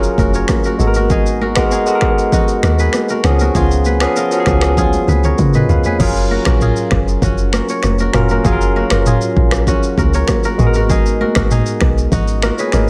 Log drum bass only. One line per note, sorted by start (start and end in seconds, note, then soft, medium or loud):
0.18 0.44 F1 loud
0.79 1.82 G#1 medium
2.63 2.89 D#2 medium
3.24 3.50 C#2 loud
3.55 4.06 C#2 loud
4.47 4.98 C#2 medium
5.08 5.34 C#2 medium
5.39 5.64 C#3 loud
5.69 5.83 C#2 medium
6.00 6.39 F#1 loud
6.46 6.72 A#1 medium
6.92 7.17 F#1 medium
7.22 7.61 F#1 loud
7.84 8.09 F1 loud
8.14 8.40 F1 medium
8.45 8.84 F#1 loud
8.91 9.17 F#1 medium
9.37 9.76 A#1 medium
9.98 10.23 C#2 medium
10.59 11.24 G#1 loud
11.36 11.62 G#1 medium
11.81 12.07 B1 medium
12.12 12.51 G#1 loud
12.73 12.90 G#1 medium